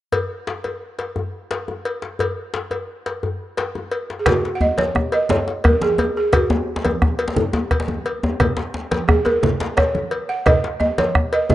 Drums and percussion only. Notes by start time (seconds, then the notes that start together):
0.12 cowbell, djembe bass
0.47 djembe slap
0.64 cowbell, djembe tone
0.99 cowbell, djembe slap
1.16 djembe slap, djembe bass
1.51 cowbell, djembe slap
1.68 djembe slap, djembe tone
1.85 cowbell
2.02 djembe slap
2.19 cowbell, djembe bass
2.54 djembe slap
2.71 cowbell, djembe tone
3.06 cowbell, djembe slap
3.23 djembe slap, djembe bass
3.57 cowbell, djembe slap
3.75 djembe slap, djembe tone
3.92 cowbell
4.10 djembe slap
4.26 bombo rim, bombo low, cowbell, djembe slap, low conga
4.28 djembe slap, djembe bass
4.45 djembe slap
4.61 djembe bass
4.78 bombo rim, cowbell, djembe slap, high conga, djembe tone
4.95 bombo rim, bombo low, djembe slap, djembe tone
5.12 cowbell, djembe slap
5.29 djembe slap, low conga, djembe bass
5.48 bombo rim, djembe slap
5.64 bombo rim, bombo low, cowbell, djembe bass
5.81 djembe slap, high conga, djembe tone
5.98 cowbell, djembe tone, high conga
6.17 djembe slap
6.33 bombo rim, bombo low, cowbell, djembe slap, low conga, djembe bass
6.50 djembe slap, djembe tone
6.76 djembe slap
6.85 bombo rim, cowbell, high conga, djembe tone
7.02 bombo rim, bombo low, djembe tone
7.19 cowbell, djembe slap
7.28 djembe slap
7.36 djembe tone, low conga, djembe bass
7.53 bombo rim, djembe slap, djembe tone
7.71 bombo rim, bombo low, cowbell
7.80 djembe slap
7.88 high conga, djembe tone
8.05 cowbell, high conga
8.23 djembe slap, djembe tone
8.40 bombo rim, bombo low, cowbell, djembe slap, djembe tone, djembe bass, low conga
8.57 djembe slap
8.74 djembe slap
8.91 bombo rim, cowbell, djembe slap, djembe tone, high conga
9.09 bombo rim, bombo low, djembe slap, djembe tone
9.25 cowbell, djembe slap, djembe tone
9.43 djembe slap, djembe bass, low conga
9.60 bombo rim, djembe slap
9.77 bombo rim, bombo low, cowbell, djembe slap
9.95 djembe tone, high conga
10.11 cowbell, high conga
10.30 djembe slap
10.46 bombo rim, bombo low, cowbell, high conga, low conga, djembe bass
10.64 djembe slap, high conga
10.80 djembe tone, high conga
10.98 cowbell, djembe slap, djembe tone, high conga
11.15 bombo rim, bombo low, djembe tone, high conga
11.33 cowbell
11.50 bombo rim, djembe tone, low conga, djembe bass